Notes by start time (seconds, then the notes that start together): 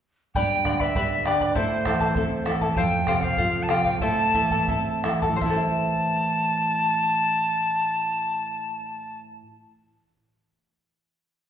0.35 G2 G4 B4 D5 G5 B5, bombo low
0.65 D3 B4 D5 G5 B5, bombo rim, bombo low
0.73 G5
0.80 B4 D5 E5 B5, bombo low
0.95 G3 B4 D5 G5 B5, bombo low
1.25 D3 B4 D5 G5 B5, bombo rim
1.41 B4 D5 B5, bombo low
1.55 A2 E4 A4 C5 E5 A5, bombo low
1.85 E3 E4 A4 E5 A5, bombo rim, bombo low
2.00 E4 A4 A5, bombo low
2.15 C4 E4 A4 E5 A5, bombo low
2.45 E3 E4 A4 E5 A5, bombo rim
2.61 E4 A4 A5, bombo low
2.70 A5
2.76 F2 A4 C5 F5 G5, bombo low
3.07 C3 A4 C5 F5, bombo rim, bombo low
3.15 G5
3.22 C5 F5, bombo low
3.37 F3 A4 C5 F5, bombo low
3.62 A5
3.68 C3 A4 C5 F5 G5, bombo rim
3.84 C5 F5, bombo low
4.00 A2 E4 A4 C5 E5 A5, bombo low
4.34 E3 E4 A4 E5 A5, bombo low
4.50 E4 A4 A5, bombo low
4.68 C4 E4 A4 E5 A5, bombo low
5.04 E3 E4 A4 E5 A5, bombo rim
5.22 E4 A4 A5, bombo low
5.26 A2
5.32 E3
5.36 A3 C5
5.41 E4 E5 A5, bombo low
5.46 E4
5.50 A4 C5 A5
5.56 E5